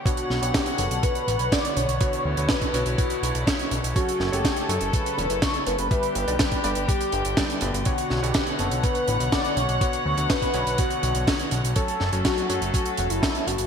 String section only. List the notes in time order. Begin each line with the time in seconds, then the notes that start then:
0.06 D3 B3 C#5 F#5
2.01 E4
3.95 C#3 A3 A4
5.91 D3 G3 B3 G4
7.86 C#5 F#5
11.76 F#3 A3 C#4 A4